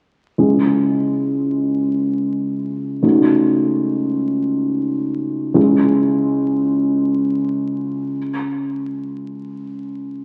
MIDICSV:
0, 0, Header, 1, 2, 480
1, 0, Start_track
1, 0, Key_signature, 4, "minor"
1, 0, Tempo, 500000
1, 9836, End_track
2, 0, Start_track
2, 0, Title_t, "Grand piano"
2, 0, Program_c, 0, 0
2, 367, Note_on_c, 0, 37, 33
2, 368, Note_on_c, 0, 64, 27
2, 369, Note_on_c, 0, 56, 26
2, 376, Note_on_c, 0, 68, 26
2, 549, Control_c, 0, 64, 127
2, 2865, Note_off_c, 0, 37, 0
2, 2866, Note_off_c, 0, 56, 0
2, 2866, Note_off_c, 0, 64, 0
2, 2870, Note_off_c, 0, 68, 0
2, 2906, Note_on_c, 0, 37, 33
2, 2907, Note_on_c, 0, 66, 27
2, 2909, Note_on_c, 0, 63, 27
2, 2910, Note_on_c, 0, 57, 28
2, 2929, Control_c, 0, 64, 0
2, 3080, Control_c, 0, 64, 127
2, 5295, Note_off_c, 0, 37, 0
2, 5296, Note_off_c, 0, 66, 0
2, 5297, Note_off_c, 0, 57, 0
2, 5297, Note_off_c, 0, 63, 0
2, 5322, Note_on_c, 0, 37, 38
2, 5324, Note_on_c, 0, 56, 30
2, 5325, Note_on_c, 0, 64, 31
2, 5329, Note_on_c, 0, 68, 31
2, 5353, Control_c, 0, 64, 0
2, 5521, Control_c, 0, 64, 127
2, 7853, Control_c, 0, 64, 0
2, 7986, Control_c, 0, 64, 127
2, 9836, Note_off_c, 0, 37, 0
2, 9836, Note_off_c, 0, 56, 0
2, 9836, Note_off_c, 0, 64, 0
2, 9836, Note_off_c, 0, 68, 0
2, 9836, End_track
0, 0, End_of_file